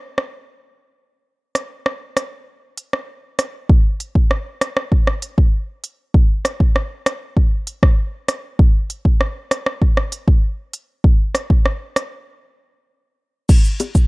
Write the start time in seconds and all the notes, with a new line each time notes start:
0.18 cross-stick
1.55 cross-stick, closed hi-hat
1.86 cross-stick
2.17 cross-stick, closed hi-hat
2.77 closed hi-hat
2.93 cross-stick
3.39 cross-stick, closed hi-hat
3.69 kick
4.00 closed hi-hat
4.15 kick
4.31 cross-stick
4.61 cross-stick, closed hi-hat
4.77 cross-stick
4.92 kick
5.07 cross-stick
5.22 closed hi-hat
5.38 kick
5.84 closed hi-hat
6.14 kick
6.45 cross-stick, closed hi-hat
6.60 kick
6.76 cross-stick
7.06 cross-stick, closed hi-hat
7.37 kick
7.67 closed hi-hat
7.83 kick, cross-stick
8.28 cross-stick, closed hi-hat
8.59 kick
8.90 closed hi-hat
9.05 kick
9.21 cross-stick
9.51 cross-stick, closed hi-hat
9.66 cross-stick
9.82 kick
9.97 cross-stick
10.12 closed hi-hat
10.28 kick
10.73 closed hi-hat
11.04 kick
11.35 cross-stick, closed hi-hat
11.50 kick
11.66 cross-stick
11.96 cross-stick, closed hi-hat
13.49 kick, crash, shaker
13.65 shaker
13.80 closed hi-hat, high bongo, shaker
13.95 kick, shaker